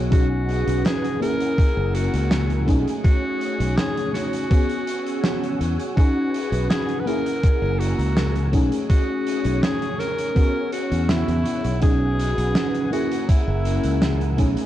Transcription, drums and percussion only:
0.12 kick, closed hi-hat
0.49 closed hi-hat
0.67 closed hi-hat
0.85 snare, closed hi-hat
1.04 closed hi-hat
1.22 closed hi-hat
1.40 closed hi-hat
1.58 kick, closed hi-hat
1.95 closed hi-hat
2.13 closed hi-hat
2.31 snare, closed hi-hat
2.50 closed hi-hat
2.68 kick, closed hi-hat
2.88 closed hi-hat
3.04 kick, closed hi-hat
3.41 closed hi-hat
3.60 closed hi-hat
3.77 snare, closed hi-hat
3.97 closed hi-hat
4.14 snare, closed hi-hat
4.33 closed hi-hat
4.51 kick, closed hi-hat
4.69 closed hi-hat
4.87 closed hi-hat
5.06 closed hi-hat
5.24 snare, closed hi-hat
5.43 closed hi-hat
5.61 closed hi-hat
5.79 closed hi-hat
5.97 kick, closed hi-hat
6.34 closed hi-hat
6.53 closed hi-hat
6.70 snare, closed hi-hat
6.89 closed hi-hat
7.07 closed hi-hat
7.26 closed hi-hat
7.43 kick, closed hi-hat
7.81 closed hi-hat
7.99 closed hi-hat
8.17 snare, closed hi-hat
8.36 closed hi-hat
8.53 kick, closed hi-hat
8.72 closed hi-hat
8.90 kick, closed hi-hat
9.27 closed hi-hat
9.44 closed hi-hat
9.63 snare, closed hi-hat
9.82 closed hi-hat
9.99 snare, closed hi-hat
10.18 closed hi-hat
10.36 kick, closed hi-hat
10.72 closed hi-hat
10.92 closed hi-hat
11.09 snare, closed hi-hat
11.28 closed hi-hat
11.46 closed hi-hat
11.64 closed hi-hat
11.82 kick, closed hi-hat
12.20 closed hi-hat
12.38 closed hi-hat
12.55 snare, closed hi-hat
12.74 closed hi-hat
12.93 closed hi-hat
13.11 closed hi-hat
13.29 kick, closed hi-hat
13.65 closed hi-hat
13.84 closed hi-hat
14.02 snare, closed hi-hat
14.21 closed hi-hat
14.38 kick, closed hi-hat
14.57 closed hi-hat

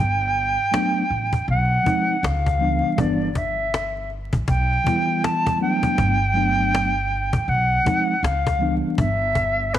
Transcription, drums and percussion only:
0.21 cajon slap
0.35 cajon slap
0.74 cajon slap
1.10 cajon slap
1.33 cajon bass, cajon slap
1.48 cajon slap
1.86 cajon bass
2.09 cajon slap
2.24 cajon slap
2.46 cajon bass
2.60 cajon slap
2.98 cajon bass
3.22 cajon slap
3.35 cajon bass, cajon slap
3.74 cajon slap
4.10 cajon slap
4.33 cajon bass, cajon slap
4.48 cajon bass
4.87 cajon bass
5.09 cajon slap
5.24 cajon slap
5.47 cajon bass
5.60 cajon slap
5.83 cajon bass
5.98 cajon bass
6.22 cajon slap
6.36 cajon slap
6.75 cajon slap
7.11 cajon slap
7.33 cajon bass, cajon slap
7.48 cajon slap
7.86 cajon bass
8.09 cajon slap
8.24 cajon slap
8.47 cajon bass
8.61 cajon slap
8.98 cajon bass
9.22 cajon slap
9.35 cajon bass, cajon slap
9.60 cajon slap
9.74 cajon slap

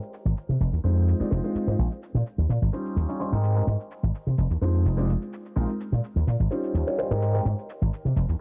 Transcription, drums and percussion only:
0.02 cabasa
0.14 cabasa
0.26 cabasa
0.37 cabasa
0.50 cabasa
0.61 cabasa
0.73 cabasa
0.85 cabasa
0.97 cabasa
1.08 cabasa
1.21 cabasa
1.32 cabasa
1.44 cabasa
1.56 cabasa
1.68 cabasa
1.79 cabasa
1.92 cabasa
2.03 cabasa
2.15 cabasa
2.27 cabasa
2.39 cabasa
2.50 cabasa
2.63 cabasa
2.73 cabasa
2.86 cabasa
2.97 cabasa
3.09 cabasa
3.20 cabasa
3.33 cabasa
3.44 cabasa
3.56 cabasa
3.68 cabasa
3.80 cabasa
3.91 cabasa
4.04 cabasa
4.15 cabasa
4.27 cabasa
4.38 cabasa
4.51 cabasa
4.62 cabasa
4.75 cabasa
4.86 cabasa
4.98 cabasa
5.09 cabasa
5.22 cabasa
5.33 cabasa
5.46 cabasa
5.57 cabasa
5.69 cabasa
5.80 cabasa
5.93 cabasa
6.04 cabasa
6.17 cabasa
6.28 cabasa
6.40 cabasa
6.51 cabasa
6.64 cabasa
6.75 cabasa
6.87 cabasa
6.99 cabasa
7.11 cabasa
7.22 cabasa
7.35 cabasa
7.46 cabasa
7.58 cabasa
7.70 cabasa
7.82 cabasa
7.93 cabasa
8.06 cabasa
8.17 cabasa
8.29 cabasa

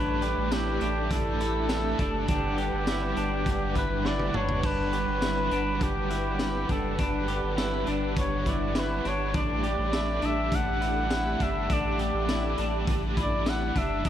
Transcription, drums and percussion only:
0.22 closed hi-hat
0.52 snare, closed hi-hat, tambourine
0.81 closed hi-hat
1.10 kick, closed hi-hat
1.41 closed hi-hat
1.69 snare, closed hi-hat, tambourine
1.99 kick, closed hi-hat
2.28 kick, closed hi-hat
2.58 closed hi-hat
2.87 snare, closed hi-hat, tambourine
3.17 closed hi-hat
3.46 kick, closed hi-hat
3.75 kick, closed hi-hat
4.05 snare
4.19 high tom
4.34 mid tom
4.49 floor tom
4.63 kick, crash
4.93 closed hi-hat
5.22 snare, closed hi-hat, tambourine
5.51 closed hi-hat
5.81 kick, closed hi-hat
6.11 closed hi-hat
6.39 snare, closed hi-hat, tambourine
6.69 kick, closed hi-hat
6.99 kick, closed hi-hat
7.28 closed hi-hat
7.58 snare, closed hi-hat, tambourine
7.87 closed hi-hat
8.17 kick, closed hi-hat
8.46 kick, closed hi-hat
8.75 snare, closed hi-hat, tambourine
9.05 closed hi-hat
9.34 kick, closed hi-hat
9.64 closed hi-hat
9.93 snare, closed hi-hat, tambourine
10.22 closed hi-hat
10.52 kick, closed hi-hat
10.82 closed hi-hat
11.11 snare, closed hi-hat, tambourine
11.40 kick, closed hi-hat
11.70 kick, closed hi-hat
11.99 closed hi-hat
12.29 snare, closed hi-hat, tambourine
12.58 closed hi-hat
12.87 kick, closed hi-hat
13.17 kick, closed hi-hat
13.46 snare, closed hi-hat, tambourine
13.76 kick, closed hi-hat
14.05 kick, closed hi-hat

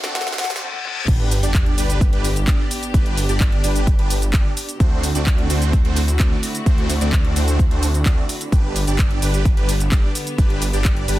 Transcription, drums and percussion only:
0.04 snare, closed hi-hat
0.15 snare, closed hi-hat
0.21 snare
0.27 snare, closed hi-hat
0.33 snare
0.38 snare, open hi-hat
0.44 snare
0.50 snare, closed hi-hat
0.56 snare
0.73 high tom
0.85 mid tom
0.96 mid tom
1.08 kick, closed hi-hat, crash, cabasa
1.31 open hi-hat, cabasa
1.43 closed hi-hat, cabasa
1.54 kick, clap, closed hi-hat, cabasa
1.66 closed hi-hat
1.78 open hi-hat, cabasa
1.90 closed hi-hat, cabasa
2.01 kick, closed hi-hat, cabasa
2.13 closed hi-hat
2.24 open hi-hat, cabasa
2.36 closed hi-hat, cabasa
2.48 kick, clap, closed hi-hat, cabasa
2.71 open hi-hat, cabasa
2.83 closed hi-hat, cabasa
2.94 kick, closed hi-hat, cabasa
3.06 closed hi-hat
3.17 open hi-hat, cabasa
3.29 closed hi-hat, cabasa
3.40 kick, clap, closed hi-hat, cabasa
3.52 closed hi-hat
3.64 open hi-hat, cabasa
3.76 closed hi-hat, cabasa
3.87 kick, closed hi-hat, cabasa
3.99 closed hi-hat
4.10 open hi-hat, cabasa
4.22 closed hi-hat, cabasa
4.33 kick, clap, closed hi-hat, cabasa
4.57 open hi-hat, cabasa
4.69 closed hi-hat, cabasa
4.80 kick, closed hi-hat, cabasa
5.03 open hi-hat, cabasa
5.15 closed hi-hat, cabasa
5.27 kick, clap, closed hi-hat, cabasa
5.38 closed hi-hat
5.50 open hi-hat, cabasa
5.62 closed hi-hat, cabasa
5.73 kick, closed hi-hat, cabasa
5.85 closed hi-hat
5.96 open hi-hat, cabasa
6.08 closed hi-hat, cabasa
6.19 kick, clap, closed hi-hat, cabasa
6.43 open hi-hat, cabasa
6.55 closed hi-hat, cabasa
6.66 kick, closed hi-hat, cabasa
6.78 closed hi-hat
6.90 open hi-hat, cabasa
7.01 closed hi-hat, cabasa
7.13 kick, clap, closed hi-hat, cabasa
7.25 closed hi-hat
7.36 open hi-hat, cabasa
7.48 closed hi-hat, cabasa
7.59 kick, closed hi-hat, cabasa
7.71 closed hi-hat
7.83 open hi-hat, cabasa
7.94 closed hi-hat, cabasa
8.06 kick, clap, closed hi-hat, cabasa
8.29 open hi-hat, cabasa
8.41 closed hi-hat, cabasa
8.52 kick, closed hi-hat, cabasa
8.76 open hi-hat, cabasa
8.87 closed hi-hat, cabasa
8.99 kick, clap, closed hi-hat, cabasa
9.11 closed hi-hat
9.22 open hi-hat, cabasa
9.34 closed hi-hat, cabasa
9.45 kick, closed hi-hat, cabasa
9.57 closed hi-hat
9.69 open hi-hat, cabasa
9.80 closed hi-hat, cabasa
9.92 kick, clap, closed hi-hat, cabasa
10.15 open hi-hat, cabasa
10.27 closed hi-hat, cabasa
10.38 kick, closed hi-hat, cabasa
10.50 closed hi-hat
10.62 open hi-hat, cabasa
10.73 closed hi-hat, cabasa
10.85 kick, clap, closed hi-hat, cabasa
10.97 closed hi-hat
11.08 open hi-hat, cabasa

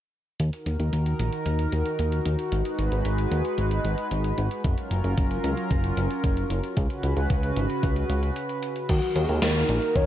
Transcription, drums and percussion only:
0.40 closed hi-hat
0.53 closed hi-hat
0.66 closed hi-hat
0.80 closed hi-hat
0.93 closed hi-hat
1.06 closed hi-hat
1.19 closed hi-hat
1.33 closed hi-hat
1.46 closed hi-hat
1.59 closed hi-hat
1.72 closed hi-hat
1.86 closed hi-hat
1.99 closed hi-hat
2.12 closed hi-hat
2.25 closed hi-hat
2.39 closed hi-hat
2.52 closed hi-hat
2.65 closed hi-hat
2.79 closed hi-hat
2.92 closed hi-hat
3.05 closed hi-hat
3.18 closed hi-hat
3.32 closed hi-hat
3.45 closed hi-hat
3.58 closed hi-hat
3.71 closed hi-hat
3.85 closed hi-hat
3.98 closed hi-hat
4.11 closed hi-hat
4.24 closed hi-hat
4.38 closed hi-hat
4.51 closed hi-hat
4.64 kick, closed hi-hat
4.78 closed hi-hat
4.91 closed hi-hat
5.04 closed hi-hat
5.18 kick, closed hi-hat
5.31 closed hi-hat
5.44 closed hi-hat
5.57 closed hi-hat
5.71 kick, closed hi-hat
5.84 closed hi-hat
5.97 closed hi-hat
6.11 closed hi-hat
6.24 kick, closed hi-hat
6.37 closed hi-hat
6.50 closed hi-hat
6.64 closed hi-hat
6.77 kick, closed hi-hat
6.90 closed hi-hat
7.03 closed hi-hat
7.17 closed hi-hat
7.30 kick, closed hi-hat
7.43 closed hi-hat
7.56 closed hi-hat
7.70 closed hi-hat
7.83 kick, closed hi-hat
7.96 closed hi-hat
8.10 closed hi-hat
8.23 closed hi-hat
8.36 closed hi-hat
8.49 closed hi-hat
8.63 closed hi-hat
8.76 closed hi-hat
8.89 kick, closed hi-hat, crash
9.02 closed hi-hat
9.16 closed hi-hat
9.29 closed hi-hat
9.42 snare, closed hi-hat
9.56 closed hi-hat
9.69 closed hi-hat
9.82 closed hi-hat
9.96 kick, closed hi-hat

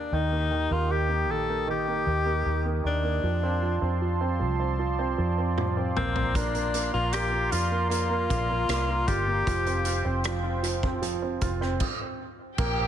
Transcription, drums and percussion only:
5.58 high tom
5.97 mid tom
6.16 floor tom
6.35 kick, closed hi-hat
6.55 closed hi-hat
6.74 closed hi-hat
7.13 cross-stick, closed hi-hat
7.52 closed hi-hat
7.91 closed hi-hat
8.30 kick, closed hi-hat
8.69 cross-stick, closed hi-hat
9.08 kick, closed hi-hat
9.47 kick, closed hi-hat
9.67 closed hi-hat
9.85 closed hi-hat
10.24 cross-stick, closed hi-hat
10.64 closed hi-hat
10.83 kick
11.03 closed hi-hat
11.41 kick, closed hi-hat
11.62 cross-stick
11.80 kick, crash
12.58 kick, crash

